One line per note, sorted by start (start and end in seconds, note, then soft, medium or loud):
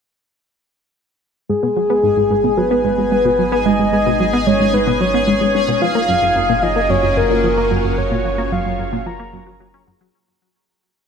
1.49 5.79 G#1 medium
1.49 1.53 G#2 medium
1.49 5.82 G#3 medium
1.49 2.59 G#4 loud
1.49 10.16 G#4 medium
1.49 10.15 G#5 medium
1.62 1.67 B2 medium
1.62 5.82 B3 medium
1.77 1.80 F#3 medium
1.90 1.94 B3 medium
1.97 7.03 D#4 medium
2.03 2.10 G#2 medium
2.03 7.55 D#5 medium
2.17 2.23 G#2 medium
2.31 2.34 G#2 medium
2.44 2.48 B2 medium
2.44 5.82 B4 medium
2.57 2.61 F#3 medium
2.57 2.84 B4 medium
2.71 2.75 B3 loud
2.84 2.91 G#2 loud
2.84 3.62 B4 medium
2.98 3.04 G#2 medium
3.12 3.15 G#2 medium
3.25 3.29 B2 medium
3.39 3.42 F#3 medium
3.52 3.56 B3 loud
3.66 3.72 G#2 loud
3.66 4.48 D#5 loud
3.79 3.85 G#2 medium
3.93 3.96 G#2 medium
4.06 4.10 B2 medium
4.20 4.24 F#3 medium
4.33 4.37 B3 medium
4.47 4.53 G#2 loud
4.47 4.75 C#5 medium
4.60 4.66 G#2 medium
4.73 4.77 G#2 medium
4.73 5.02 B4 loud
4.87 4.91 B2 loud
5.01 5.04 F#3 medium
5.01 5.81 C#5 loud
5.14 5.18 B3 medium
5.27 5.34 G#2 medium
5.41 5.47 G#2 medium
5.55 5.58 G#2 medium
5.68 5.72 B2 loud
5.82 10.11 F#1 medium
5.82 5.86 F3 medium
5.82 10.14 A#3 medium
5.82 6.64 F5 loud
5.95 5.99 A#3 medium
6.09 6.15 F#2 medium
6.17 10.14 C#4 medium
6.22 6.29 F#2 medium
6.32 10.14 C#5 medium
6.36 6.40 F#2 medium
6.49 6.53 A#2 loud
6.49 10.14 F4 medium
6.58 10.14 F#4 medium
6.63 6.67 F3 medium
6.63 6.92 D#5 medium
6.76 6.80 A#3 medium
6.90 6.96 F#2 loud
6.90 7.19 C#5 loud
7.03 7.10 F#2 medium
7.17 7.21 F#2 medium
7.17 8.00 A#4 loud
7.30 7.34 A#2 medium
7.44 7.48 F3 medium
7.58 7.61 A#3 loud
7.71 7.77 F#2 medium
7.85 7.91 F#2 medium
7.98 8.02 F#2 medium
7.98 8.52 C#5 loud
8.11 8.15 A#2 medium
8.25 8.29 F3 medium
8.38 8.42 A#3 loud
8.52 8.58 F#2 loud
8.52 9.08 F5 loud
8.66 8.72 F#2 medium
8.79 8.83 F#2 medium
8.93 8.96 A#2 loud
9.06 9.10 F3 medium
9.06 9.87 A#5 loud
9.19 9.23 A#3 loud
9.33 9.39 F#2 loud
9.47 9.50 F#3 medium
9.60 9.66 F#3 medium
9.74 9.83 C#4 loud
9.87 9.91 F#2 loud
10.01 10.07 F#3 loud